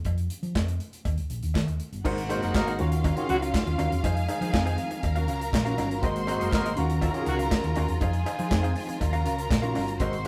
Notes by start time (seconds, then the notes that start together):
0.05 F2, kick, closed hi-hat, cowbell
0.18 closed hi-hat
0.30 closed hi-hat
0.43 F3, closed hi-hat
0.55 F2, kick, snare, clap, cowbell
0.68 closed hi-hat
0.80 closed hi-hat
0.93 closed hi-hat
1.05 D#2, kick, closed hi-hat, cowbell
1.17 C#2, closed hi-hat
1.30 A#1, closed hi-hat
1.43 D#2, closed hi-hat
1.54 D#3, kick, snare, clap, cowbell
1.67 D#2, closed hi-hat
1.80 closed hi-hat
1.92 G1, closed hi-hat
2.04 G#1 C3 G#3 A#3 D#4 F#4 A#4 C5 F#5, kick, crash, cowbell
2.18 closed hi-hat
2.29 D#3 F#3 G#3 C4 D#4 F#4 A#4 C5 F#5, closed hi-hat, cowbell
2.42 F#1 F#3 A#3 D#4 A#4 C5 F#5, closed hi-hat
2.54 G#1 F#3 A#3 D#4 A#4, kick, snare, clap, cowbell
2.67 D#4 A#4 C5 F#5, closed hi-hat
2.79 D#2 C#3 D#3 F#3 C#4 F4 F#4 A#4 F5, closed hi-hat
2.92 muted clean electric guitar stroke, closed hi-hat
3.04 C#4 F#4 A#4 F5, kick, closed hi-hat, cowbell
3.17 D#3 G#3 C#4 F4 F#4 G#4, muted clean electric guitar stroke, closed hi-hat
3.29 C#2 C#3 F#3 A#3 F#4, muted clean electric guitar stroke, closed hi-hat
3.41 C#4 F#4 A#4 F5, closed hi-hat
3.54 kick, snare, clap, cowbell
3.66 D#2, muted clean electric guitar stroke, closed hi-hat
3.78 D#2 C#4 F#4 A#4 F5, closed hi-hat, cowbell
3.92 E2, muted clean electric guitar stroke, closed hi-hat
4.04 F2 D#3 G#3 D#4 G#4 C5 F5 G#5, kick, closed hi-hat, cowbell
4.17 muted clean electric guitar stroke, closed hi-hat
4.28 D#4 G#4 C5 F5, closed hi-hat, cowbell
4.41 F3 D#4 G#4 C5 F5, closed hi-hat
4.53 F2 F3 C4 D#4 G#4, kick, snare, clap, cowbell
4.65 D#4 G#4 C5 F5, closed hi-hat
4.78 closed hi-hat
4.91 muted clean electric guitar stroke, closed hi-hat
5.03 D#2 C#3 F#3 A#4 A#5, muted clean electric guitar stroke, kick, closed hi-hat, cowbell
5.16 C#4 F#4 A#4 F5, closed hi-hat
5.28 C#2 C#4 F#4 A#4 F5, closed hi-hat
5.41 muted clean electric guitar stroke, closed hi-hat
5.53 A#1, muted clean electric guitar stroke, kick, snare, clap, cowbell
5.65 D#3 C#4 F4 F#4 A#4 F5, closed hi-hat
5.78 G1 C#4 F#4 A#4 F5, snare, closed hi-hat, cowbell
5.91 muted clean electric guitar stroke, closed hi-hat
6.02 G#1 C3 G#3 A#3 C4 F#4 A#4 C5 D#5 C6, kick, closed hi-hat, cowbell
6.16 closed hi-hat
6.27 D#3 F#3 G#3 C4 F#4 A#4 C5 D#5, closed hi-hat, cowbell
6.40 F#1 F#3 A#3 C4 D#4 F#4 A#4 D#5, closed hi-hat
6.51 G#1 F#3 A#3 D#4 A#4, muted clean electric guitar stroke, kick, snare, clap, cowbell
6.64 C4 F#4 A#4 D#5, closed hi-hat
6.76 D#2 C#3 D#3 F#3 C#4 F4 F#4 A#4 F5 A#5, closed hi-hat
6.90 muted clean electric guitar stroke, closed hi-hat
7.01 C#4 F#4 A#4 F5, kick, closed hi-hat, cowbell
7.14 D#3 G#3 C#4 F4 F#4 G#4, muted clean electric guitar stroke, closed hi-hat
7.21 G#4
7.26 C#2 C#3 F#3 A#3 F#4, muted clean electric guitar stroke, closed hi-hat
7.39 C#4 F#4 A#4 F5, closed hi-hat
7.51 kick, snare, clap, cowbell
7.64 D#2, muted clean electric guitar stroke, closed hi-hat
7.76 D#2 C#4 F#4 A#4 F5, closed hi-hat, cowbell
7.88 E2, muted clean electric guitar stroke, closed hi-hat
8.01 F2 D#3 G#3 D#4 G#4 C5 F5 G#5, kick, closed hi-hat, cowbell
8.13 muted clean electric guitar stroke, closed hi-hat
8.26 D#4 G#4 C5 F5, closed hi-hat, cowbell
8.38 F3 D#4 G#4 C5 F5, closed hi-hat
8.51 F2 F3 C4 D#4 G#4, kick, snare, clap, cowbell
8.63 D#4 G#4 C5 F5, closed hi-hat
8.75 muted clean electric guitar stroke, open hi-hat
8.87 muted clean electric guitar stroke, closed hi-hat
9.00 D#2 C#3 F#3 A#4 A#5, muted clean electric guitar stroke, kick, closed hi-hat, cowbell
9.13 C#4 F#4 A#4 F5, closed hi-hat
9.25 C#2 C#4 F#4 A#4 F5, closed hi-hat
9.38 muted clean electric guitar stroke, closed hi-hat
9.50 A#1, muted clean electric guitar stroke, kick, snare, clap, cowbell
9.62 D#3 C#4 F4 F#4 A#4 F5, closed hi-hat
9.75 G1 C#4 F#4 A#4 F5, snare, open hi-hat, cowbell
9.87 muted clean electric guitar stroke, closed hi-hat
10.00 G#1 C3 G#3 A#3 C4 F#4 A#4 C5 D#5 C6, kick, closed hi-hat, cowbell
10.13 closed hi-hat